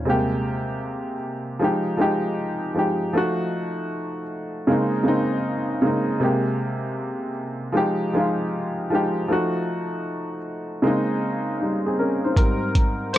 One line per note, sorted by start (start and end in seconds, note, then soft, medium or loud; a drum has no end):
0.05 1.13 C3 medium
0.05 1.13 G#3 medium
0.05 1.14 A#3 medium
0.10 1.15 G4 medium
1.59 1.93 F3 medium
1.59 1.93 G#3 medium
1.59 1.94 D#4 medium
1.64 1.95 G4 medium
1.97 2.53 F3 medium
1.97 2.54 G#3 medium
1.97 2.55 D#4 medium
2.01 2.56 G4 medium
2.74 3.04 F3 medium
2.74 3.05 G#3 medium
2.74 3.06 D#4 medium
2.79 3.06 G4 medium
3.13 4.21 F3 medium
3.13 4.21 A3 medium
3.13 4.22 D#4 medium
3.17 4.23 F#4 medium
4.67 5.00 C#3 medium
4.67 5.01 G#3 medium
4.67 5.01 A#3 medium
4.67 5.02 C4 medium
4.72 5.03 D#4 medium
5.03 5.60 C#3 medium
5.03 5.61 G#3 medium
5.03 5.62 A#3 medium
5.03 5.62 C4 medium
5.08 5.63 D#4 medium
5.82 6.12 C#3 medium
5.82 6.12 G#3 medium
5.82 6.13 A#3 medium
5.82 6.14 C4 medium
5.86 6.14 D#4 medium
6.20 7.28 C3 medium
6.20 7.28 G#3 medium
6.20 7.29 A#3 medium
6.24 7.30 G4 medium
7.72 8.07 F3 medium
7.72 8.08 G#3 medium
7.72 8.08 D#4 medium
7.77 8.09 G4 medium
8.13 8.69 F3 medium
8.13 8.70 G#3 medium
8.13 8.71 D#4 medium
8.18 8.71 F4 medium
8.90 9.20 F3 medium
8.90 9.21 G#3 medium
8.90 9.21 D#4 medium
8.95 9.22 G4 medium
9.28 10.36 F3 medium
9.28 10.37 A3 medium
9.28 10.37 D#4 medium
9.33 10.38 F#4 medium
10.82 11.16 C#3 medium
10.82 11.16 G#3 medium
10.82 11.17 A#3 medium
10.82 11.17 C4 medium
10.87 11.18 D#4 medium
11.61 11.85 G3 medium
11.61 11.84 D#4 medium
11.86 11.99 C4 medium
11.86 11.98 G#4 medium
11.99 12.23 C#4 soft
11.99 12.22 A#4 medium
12.24 12.61 D#4 soft
12.24 12.60 C5 medium
12.37 12.93 G#2 medium
12.37 12.93 G3 medium
12.37 12.93 C4 medium
12.37 13.10 A#4 medium
12.37 kick loud
12.37 closed hi-hat medium
12.75 kick loud
12.75 closed hi-hat medium
13.13 13.18 C5 medium
13.13 closed hi-hat medium